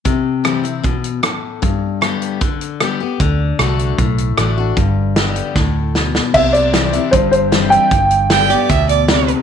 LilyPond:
<<
  \new Staff \with { instrumentName = "Fiddle" } { \time 4/4 \key c \major \tempo 4 = 153 r1 | r1 | r1 | r1 |
r1 | r4 g''8 d''8 e''8 d''8 d''8 r8 | }
  \new Staff \with { instrumentName = "Upright piano" } { \time 4/4 \key c \major r1 | r1 | r1 | r1 |
e''8 d''4. c''8 c''4 g''8~ | g''2~ g''8 r4. | }
  \new Staff \with { instrumentName = "Steel-string acoustic guitar" } { \clef bass \time 4/4 \key c \major << { r4 <e g c' e'>8 <c' e'>8 r2 | r4 <d g b g'>4 r4 <d g b g'>8 <b g'>8 | r4 <d a d' fis'>4 r4 <d a d' fis'>8 <d' fis'>8 | r4 <d g b g'>4 r2 |
r4 <e g c' e'>8 <c' e'>8 r4 <e g c' e'>4 | r4 <d g b g'>8 <b g'>8 r2 | } \\ { c2 b,4 a,4 | g,2 d2 | d2 a,2 | g,2 a,4 b,4 |
c2 g,2 | g,2 b,4 c4 | } >> }
  \new Staff \with { instrumentName = "Fingered electric bass" } { \clef bass \time 4/4 \key c \major r1 | r1 | d,4 c,4 b,,4 a,,4 | g,,2 d,2 |
c,2 g,,2 | g,,2 d,2 | }
  \new DrumStaff \with { instrumentName = "Drums" } \drummode { \time 4/4 <hh bd>4 <hh ss>8 hh8 <hh bd>8 hh8 <hh ss>4 | <hh bd>4 <hh ss>8 hh8 <hh bd>8 hh8 <hh ss>4 | <hh bd>4 <hh ss>8 hh8 <hh bd>8 hh8 <hh ss>4 | <hh bd>4 <hh sn>8 hh8 <bd sn>4 sn8 sn8 |
<cymc bd>8 hh8 <hh sn>8 hh8 <hh bd>8 hh8 <hh sn>8 hh8 | <hh bd>8 hh8 <hh sn>8 hh8 <hh bd>8 hh8 <hh sn>8 hh8 | }
>>